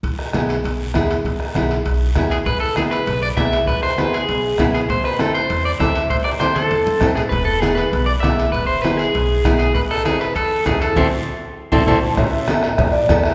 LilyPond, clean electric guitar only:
\new Staff \with { instrumentName = "Clean electric guitar" } { \time 4/4 \key e \phrygian \tempo 4 = 198 r1 | r2. r8 gis'8 | b'8 a'8 gis'8 b'4 d''8 e''4 | b'8 c''8 b'8 gis'2 gis'8 |
c''8 b'8 a'8 c''4 d''8 e''4 | c''8 d''8 c''8 a'2 gis'8 | b'8 a'8 gis'8 b'4 d''8 e''4 | b'8 c''8 b'8 gis'2 gis'8 |
b'8 a'8 gis'8 b'8 a'4 gis'8 a'8 | <e' a' c''>8 r2 <e' a' c''>8 <e' a' c''>8 r8 | r1 | }